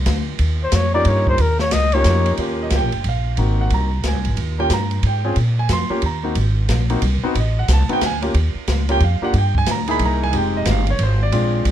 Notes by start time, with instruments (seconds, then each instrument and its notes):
0.06 upright bass D2, kick, snare, hi-hat pedal, ride
0.39 upright bass D#2, kick, ride
0.63 muted trumpet C5
0.72 upright bass F2, muted trumpet C#5, kick, snare, hi-hat pedal, ride
0.94 grand piano A#3 C#4 D#4 F4 G4, muted trumpet D5
1.05 upright bass G2, muted trumpet C#5, kick, ride
1.27 muted trumpet C5, kick
1.38 upright bass D#2, muted trumpet A#4, kick, ride
1.59 muted trumpet C#5, snare
1.71 upright bass C#2, muted trumpet D#5, kick, snare, hi-hat pedal, ride
1.92 grand piano A#3 C#4 D#4 F4 G4, muted trumpet C#5, ride
2.04 upright bass F2, kick, snare, hi-hat pedal, ride
2.26 ride
2.37 upright bass D#2, grand piano A#3 C#4 F4 G4, kick, ride
2.63 grand piano D#5
2.70 upright bass C#2, kick, snare, hi-hat pedal, ride
2.76 grand piano G5
2.82 upright bass A#1
2.92 ride
3.04 upright bass A#1, kick, ride
3.09 grand piano F5
3.37 upright bass G#1, grand piano A#3 C4 D#4 F#4, kick, ride
3.61 grand piano F#5
3.70 upright bass C2, grand piano A#5, kick, ride
4.04 upright bass C#2, kick, snare, hi-hat pedal, ride
4.08 grand piano G#5
4.14 upright bass C2
4.25 upright bass G#1, ride
4.37 upright bass D#2, kick, ride
4.59 grand piano A#3 C#4 F4 G4 G5
4.70 upright bass G2, grand piano A#5, kick, snare, hi-hat pedal, ride
4.91 ride
5.03 upright bass G#2, grand piano G5, kick, ride
5.25 grand piano C4 C#4 F4 G#4
5.36 upright bass A#2, kick, ride
5.59 grand piano G#5
5.69 upright bass F2, kick, snare, hi-hat pedal, ride
5.73 grand piano C6
5.90 grand piano A#3 C#4 F4 G4, muted upright bass stroke
6.02 upright bass D#2, kick, ride
6.06 grand piano A#5
6.23 grand piano A#3 C4 D#4 F#4
6.35 upright bass G#1, kick, ride
6.69 upright bass A#1, kick, snare, hi-hat pedal, ride
6.90 grand piano A#3 C4 D#4 F#4, ride
7.02 upright bass C2, kick, ride
7.22 grand piano B3 C4 D#4 F#4, muted upright bass stroke
7.35 upright bass A1, kick, ride
7.40 grand piano D#5
7.59 grand piano F#5
7.68 upright bass C2, kick, snare, hi-hat pedal, ride
7.73 grand piano A5
7.89 grand piano B3 C4 D#4 F#4 G5, ride
8.01 upright bass D2, kick, snare, hi-hat pedal, ride
8.06 grand piano G#5
8.22 grand piano A#3 C#4 F4 G4, ride
8.34 upright bass D#2, kick, ride
8.55 muted upright bass stroke
8.68 upright bass C#2, kick, snare, hi-hat pedal, ride
8.89 grand piano A#3 C#4 F4 G4 G5, ride
9.00 upright bass F2, grand piano F5, kick, ride
9.21 grand piano A#3 D4 F4 G4 F#5, muted upright bass stroke
9.33 upright bass G2, kick, ride
9.38 grand piano G5
9.55 grand piano G#5, kick
9.66 upright bass D2, kick, snare, hi-hat pedal, ride
9.71 grand piano A#5
9.88 grand piano A#3 D#4 E4 G#4 B5, ride
9.99 upright bass C2, kick, ride
10.05 grand piano A#5
10.24 grand piano G#5
10.33 upright bass F1, grand piano G#3 C4 D#4 G4 G5, kick, ride
10.57 grand piano D#5
10.65 upright bass G1, kick, snare, hi-hat pedal, ride
10.71 grand piano F5
10.87 grand piano C#5, ride
10.99 upright bass G#1, kick, ride
11.03 grand piano C5
11.23 grand piano D5
11.32 upright bass A#1, grand piano G#3 C4 D4 F4, kick, ride
11.65 upright bass C2, kick, ride